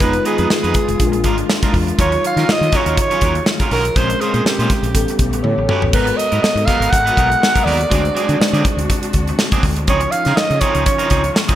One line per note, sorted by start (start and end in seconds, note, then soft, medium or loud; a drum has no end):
0.00 0.18 F1 medium
0.00 0.99 D#3 medium
0.00 1.95 G#3 medium
0.00 0.97 G#3 medium
0.00 0.14 B3 medium
0.00 0.99 B3 medium
0.00 0.14 D#4 medium
0.00 0.98 D#4 soft
0.00 3.92 F4 medium
0.00 0.98 F4 soft
0.00 0.14 G#4 medium
0.00 0.13 B4 medium
0.00 0.26 B4 medium
0.00 0.99 B4 medium
0.00 kick medium
0.00 closed hi-hat medium
0.13 muted clean electric guitar stroke soft
0.13 closed hi-hat soft
0.25 0.36 B3 medium
0.25 0.37 D#4 medium
0.25 0.37 G#4 medium
0.25 0.49 G#4 medium
0.25 0.37 B4 medium
0.25 closed hi-hat medium
0.38 0.47 F2 loud
0.38 0.49 B3 soft
0.38 0.49 D#4 soft
0.38 0.49 G#4 medium
0.38 0.48 B4 medium
0.38 closed hi-hat soft
0.50 1.21 G#4 medium
0.50 muted clean electric guitar stroke soft
0.50 muted fretless electric bass stroke soft
0.50 snare loud
0.63 0.72 F2 medium
0.63 0.73 B3 medium
0.63 0.73 D#4 medium
0.63 0.74 G#4 medium
0.63 0.74 B4 medium
0.63 closed hi-hat soft
0.74 muted clean electric guitar stroke soft
0.74 kick medium
0.74 closed hi-hat medium
0.88 0.96 F1 medium
0.88 muted clean electric guitar stroke soft
0.88 closed hi-hat medium
0.98 1.24 A#1 medium
0.98 1.98 D3 medium
0.98 1.96 G#3 medium
0.98 1.98 A#3 medium
0.98 1.96 D4 medium
0.98 1.97 F4 medium
0.98 1.07 G#4 medium
0.98 kick medium
0.98 closed hi-hat medium
1.07 2.00 A#4 medium
1.12 muted clean electric guitar stroke medium
1.12 closed hi-hat soft
1.24 1.42 G#1 medium
1.24 1.38 G#3 medium
1.24 1.38 D4 medium
1.24 1.37 F4 medium
1.24 1.37 A#4 medium
1.24 kick medium
1.24 closed hi-hat medium
1.38 muted clean electric guitar stroke soft
1.38 closed hi-hat soft
1.49 muted clean electric guitar stroke soft
1.49 snare loud
1.63 1.73 G#3 medium
1.63 1.73 D4 medium
1.63 1.74 F4 medium
1.63 1.74 A#4 medium
1.63 kick loud
1.63 closed hi-hat medium
1.73 1.91 E2 medium
1.73 muted clean electric guitar stroke soft
1.73 kick medium
1.73 open hi-hat medium
1.87 muted clean electric guitar stroke soft
1.87 closed hi-hat soft
1.97 2.16 D#2 loud
1.97 4.91 C#3 medium
1.97 3.94 D#3 medium
1.97 3.92 F#3 soft
1.97 3.94 F#3 medium
1.97 2.12 F#3 medium
1.97 2.13 C#4 medium
1.97 3.92 D#4 soft
1.97 3.92 F4 soft
1.97 2.12 F4 medium
1.97 2.11 A#4 medium
1.97 3.93 C#5 medium
1.97 2.23 C#5 medium
1.97 kick medium
1.97 closed hi-hat medium
2.12 muted clean electric guitar stroke soft
2.12 closed hi-hat soft
2.23 2.53 F5 medium
2.23 muted clean electric guitar stroke soft
2.23 closed hi-hat medium
2.36 2.44 D#3 medium
2.36 2.47 F#3 soft
2.36 2.47 C#4 soft
2.36 2.47 F4 soft
2.36 2.46 A#4 medium
2.36 snare soft
2.36 closed hi-hat soft
2.49 2.78 D#5 loud
2.49 muted clean electric guitar stroke soft
2.49 muted fretless electric bass stroke soft
2.49 snare loud
2.61 2.69 D#3 medium
2.61 muted clean electric guitar stroke soft
2.61 closed hi-hat soft
2.72 2.86 F#3 medium
2.72 2.86 C#4 medium
2.72 2.85 F4 medium
2.72 2.85 A#4 medium
2.72 kick medium
2.72 snare soft
2.72 closed hi-hat medium
2.77 2.99 C#5 medium
2.86 2.94 D#2 medium
2.86 2.96 F#3 soft
2.86 2.96 C#4 medium
2.86 2.96 F4 soft
2.86 2.95 A#4 medium
2.86 closed hi-hat medium
2.97 3.45 C#5 medium
2.97 muted clean electric guitar stroke soft
2.97 kick medium
2.97 closed hi-hat loud
3.10 3.21 F#3 medium
3.10 3.22 C#4 medium
3.10 3.23 F4 medium
3.10 3.23 C#5 medium
3.10 closed hi-hat soft
3.21 3.39 D#2 medium
3.21 3.33 F#3 medium
3.21 3.34 C#4 medium
3.21 3.34 F4 medium
3.21 3.34 A#4 medium
3.21 kick medium
3.21 closed hi-hat medium
3.35 muted clean electric guitar stroke soft
3.35 closed hi-hat soft
3.46 muted clean electric guitar stroke soft
3.46 snare loud
3.60 3.69 F#3 soft
3.60 3.70 C#4 medium
3.60 3.70 F4 medium
3.60 3.70 A#4 medium
3.60 kick medium
3.60 closed hi-hat medium
3.71 3.89 B1 medium
3.71 3.85 F#3 medium
3.71 3.85 C#4 medium
3.71 3.84 F4 medium
3.71 3.84 A#4 medium
3.71 3.98 A#4 medium
3.71 open hi-hat medium
3.85 muted clean electric guitar stroke soft
3.85 closed hi-hat medium
3.95 4.13 A#1 medium
3.95 4.94 A#2 medium
3.95 4.92 G#3 medium
3.95 4.10 G#3 medium
3.95 4.94 G#3 medium
3.95 4.94 A#3 medium
3.95 4.93 C4 soft
3.95 4.10 C#4 medium
3.95 4.93 C#4 medium
3.95 4.10 F4 medium
3.95 4.94 A#4 soft
3.95 4.22 C5 medium
3.95 4.09 C5 medium
3.95 kick loud
3.95 closed hi-hat medium
4.10 muted clean electric guitar stroke soft
4.10 closed hi-hat medium
4.21 4.32 G#3 medium
4.21 4.32 C#4 medium
4.21 4.32 F4 medium
4.21 4.47 G#4 medium
4.21 4.33 C5 medium
4.21 closed hi-hat medium
4.34 4.42 A#2 loud
4.34 4.44 G#3 soft
4.34 4.44 C#4 soft
4.34 4.44 F4 soft
4.34 4.43 C5 medium
4.34 closed hi-hat soft
4.45 5.19 G4 medium
4.45 muted fretless electric bass stroke soft
4.45 muted clean electric guitar stroke soft
4.45 snare loud
4.59 4.67 A#2 medium
4.59 4.70 G#3 medium
4.59 4.70 C#4 medium
4.59 4.71 F4 medium
4.59 4.71 C5 medium
4.59 closed hi-hat soft
4.70 muted clean electric guitar stroke soft
4.70 kick medium
4.70 snare soft
4.70 closed hi-hat medium
4.83 4.95 A#1 medium
4.83 muted clean electric guitar stroke soft
4.83 closed hi-hat medium
4.92 5.04 A1 medium
4.92 5.93 C#3 medium
4.92 5.90 G3 medium
4.92 5.92 A3 medium
4.92 5.91 B3 medium
4.92 5.92 B3 medium
4.92 5.91 C#4 medium
4.92 5.92 G4 medium
4.92 5.42 A4 medium
4.92 muted clean electric guitar stroke soft
4.92 kick medium
4.92 closed hi-hat loud
5.08 muted clean electric guitar stroke soft
5.08 closed hi-hat medium
5.19 5.33 B1 medium
5.19 kick medium
5.19 closed hi-hat medium
5.33 5.41 A1 medium
5.33 muted clean electric guitar stroke soft
5.33 closed hi-hat soft
5.43 5.53 A2 loud
5.43 5.67 A4 medium
5.43 5.67 C#5 medium
5.43 high tom medium
5.58 5.66 A1 medium
5.58 muted clean electric guitar stroke soft
5.68 5.83 A3 medium
5.68 5.83 C#4 medium
5.68 5.91 F#4 medium
5.68 5.83 G4 medium
5.68 6.15 A4 medium
5.68 5.82 B4 medium
5.68 mid tom medium
5.82 5.90 A1 medium
5.82 muted clean electric guitar stroke soft
5.82 floor tom medium
5.91 6.10 G#1 medium
5.91 7.89 B2 medium
5.91 6.08 F#3 medium
5.91 7.86 G#3 soft
5.91 9.84 G#3 medium
5.91 7.86 B3 soft
5.91 7.88 F#4 medium
5.91 7.89 A#4 medium
5.91 7.87 A#4 medium
5.91 6.19 B4 medium
5.91 kick medium
5.91 crash medium
5.95 6.08 B3 medium
5.95 6.07 D#4 medium
5.95 6.07 A#4 medium
6.07 muted clean electric guitar stroke soft
6.07 closed hi-hat soft
6.17 6.42 D#5 medium
6.17 muted clean electric guitar stroke soft
6.17 closed hi-hat medium
6.32 6.40 G#2 medium
6.32 6.42 F#3 soft
6.32 6.42 B3 medium
6.32 6.41 D#4 medium
6.32 6.41 A#4 medium
6.32 closed hi-hat soft
6.42 6.67 D#5 medium
6.42 muted clean electric guitar stroke soft
6.42 muted fretless electric bass stroke soft
6.42 snare loud
6.55 6.64 G#2 loud
6.55 muted clean electric guitar stroke medium
6.55 closed hi-hat soft
6.66 6.80 F#3 medium
6.66 6.80 B3 medium
6.66 6.80 D#4 medium
6.66 6.79 A#4 medium
6.66 6.92 F5 medium
6.66 kick medium
6.66 snare soft
6.66 closed hi-hat medium
6.80 6.88 G#1 medium
6.80 6.91 F#3 medium
6.80 6.91 B3 medium
6.80 6.90 D#4 medium
6.80 6.90 A#4 medium
6.80 closed hi-hat medium
6.91 7.10 G#1 medium
6.91 7.66 F#5 loud
6.91 muted clean electric guitar stroke soft
6.91 kick loud
6.91 closed hi-hat medium
7.05 7.15 F#3 medium
7.05 7.16 B3 medium
7.05 7.17 D#4 medium
7.05 7.17 B4 loud
7.05 closed hi-hat medium
7.16 7.34 B1 medium
7.16 7.28 F#3 medium
7.16 7.28 B3 medium
7.16 7.28 D#4 medium
7.16 7.29 A#4 medium
7.16 kick medium
7.16 closed hi-hat medium
7.30 muted clean electric guitar stroke soft
7.30 closed hi-hat medium
7.42 muted clean electric guitar stroke soft
7.42 snare loud
7.54 7.64 F#3 soft
7.54 7.65 B3 medium
7.54 7.64 D#4 medium
7.54 7.64 A#4 medium
7.54 kick medium
7.54 closed hi-hat medium
7.64 7.83 D#2 medium
7.64 7.80 F#3 loud
7.64 7.79 B3 medium
7.64 7.78 D#4 medium
7.64 7.77 A#4 medium
7.64 8.64 D5 medium
7.64 open hi-hat medium
7.79 muted clean electric guitar stroke soft
7.79 closed hi-hat medium
7.89 8.08 D2 loud
7.89 9.87 C3 medium
7.89 8.04 F#3 medium
7.89 9.84 G#3 medium
7.89 8.03 C4 medium
7.89 9.84 D4 medium
7.89 8.03 D4 medium
7.89 9.87 D4 medium
7.89 9.84 F#4 medium
7.89 9.87 F#4 medium
7.89 8.02 G#4 medium
7.89 9.85 C5 medium
7.89 kick medium
7.89 closed hi-hat medium
8.03 muted clean electric guitar stroke soft
8.03 closed hi-hat soft
8.15 8.26 F#3 medium
8.15 8.26 C4 medium
8.15 8.27 D4 medium
8.15 8.26 G#4 medium
8.15 closed hi-hat medium
8.27 8.37 D3 medium
8.27 8.38 F#3 soft
8.27 8.38 C4 soft
8.27 8.38 D4 soft
8.27 8.37 G#4 medium
8.27 closed hi-hat soft
8.39 muted clean electric guitar stroke soft
8.39 muted fretless electric bass stroke soft
8.39 snare loud
8.53 8.61 D3 medium
8.53 8.64 F#3 medium
8.53 8.64 C4 medium
8.53 8.65 D4 medium
8.53 8.65 G#4 medium
8.53 closed hi-hat soft
8.65 muted clean electric guitar stroke soft
8.65 kick medium
8.65 closed hi-hat medium
8.77 8.85 D2 medium
8.77 muted clean electric guitar stroke soft
8.77 closed hi-hat medium
8.90 muted clean electric guitar stroke soft
8.90 kick medium
8.90 closed hi-hat medium
9.03 muted clean electric guitar stroke soft
9.03 closed hi-hat medium
9.13 9.31 D2 medium
9.13 kick medium
9.13 closed hi-hat medium
9.27 muted clean electric guitar stroke medium
9.27 closed hi-hat soft
9.39 muted clean electric guitar stroke soft
9.39 snare loud
9.52 9.63 F#3 medium
9.52 9.64 C4 medium
9.52 9.64 D4 medium
9.52 9.64 G#4 medium
9.52 kick medium
9.52 closed hi-hat medium
9.63 9.88 D2 medium
9.63 muted clean electric guitar stroke soft
9.63 kick medium
9.63 open hi-hat medium
9.76 muted clean electric guitar stroke soft
9.76 closed hi-hat medium
9.87 10.05 C#2 loud
9.87 11.55 C#3 medium
9.87 11.55 D#3 medium
9.87 11.55 F3 medium
9.87 10.02 F3 medium
9.87 10.02 C4 medium
9.87 11.55 C#4 soft
9.87 11.55 C#4 medium
9.87 11.55 D#4 soft
9.87 10.01 D#4 medium
9.87 11.55 F4 medium
9.87 10.00 G#4 medium
9.87 10.13 C#5 medium
9.87 11.55 C#5 medium
9.87 kick loud
9.87 closed hi-hat medium
10.01 muted clean electric guitar stroke soft
10.01 closed hi-hat soft
10.11 10.38 F5 medium
10.11 muted clean electric guitar stroke soft
10.11 closed hi-hat medium
10.25 10.34 C#3 medium
10.25 10.37 F3 soft
10.25 10.36 C4 soft
10.25 10.36 D#4 soft
10.25 10.36 G#4 medium
10.25 snare soft
10.25 closed hi-hat soft
10.36 10.62 D#5 loud
10.36 muted fretless electric bass stroke soft
10.36 snare loud
10.50 10.58 C#3 medium
10.50 muted clean electric guitar stroke soft
10.50 closed hi-hat soft
10.60 10.76 F3 medium
10.60 10.75 C4 medium
10.60 10.74 D#4 medium
10.60 10.73 G#4 medium
10.60 10.85 C#5 medium
10.60 kick medium
10.60 closed hi-hat medium
10.75 10.83 C#2 medium
10.75 10.84 F3 soft
10.75 10.85 C4 medium
10.75 10.85 D#4 medium
10.75 10.84 G#4 medium
10.75 closed hi-hat medium
10.86 11.32 C#5 medium
10.86 muted clean electric guitar stroke soft
10.86 kick medium
10.86 closed hi-hat loud
10.98 11.09 F3 medium
10.98 11.09 C4 medium
10.98 11.10 D#4 medium
10.98 11.11 A#4 medium
10.98 closed hi-hat medium
11.10 11.28 C#2 medium
11.10 11.22 F3 medium
11.10 11.22 C4 medium
11.10 11.22 D#4 medium
11.10 11.22 G#4 medium
11.10 kick medium
11.10 closed hi-hat medium
11.24 muted clean electric guitar stroke soft
11.24 closed hi-hat soft
11.34 muted clean electric guitar stroke soft
11.34 snare loud
11.48 11.55 F3 medium
11.48 11.55 C4 medium
11.48 11.55 D#4 medium
11.48 11.55 G#4 medium
11.48 kick loud
11.48 closed hi-hat medium